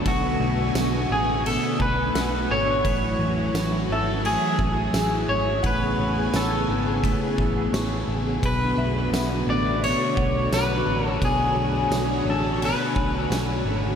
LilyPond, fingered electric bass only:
\new Staff \with { instrumentName = "Fingered electric bass" } { \clef bass \time 4/4 \key b \dorian \tempo 4 = 86 b,,8 b,,8 b,,8 a,,8. r16 b,,8 b,,8 gis,,8 | a,,8 a,,8 a,,8 gis,,8. r16 a,,8 a,,8 gis,,8 | a,,8 a,,8 a,,8 gis,,8. r16 a,,8 a,,8 a,,8 | b,,8 b,,8 b,,8 a,,8. r16 b,,8 b,,8 a,,8 |
b,,8 b,,8 b,,8 a,,8. r16 b,,8 b,,8 gis,,8 | }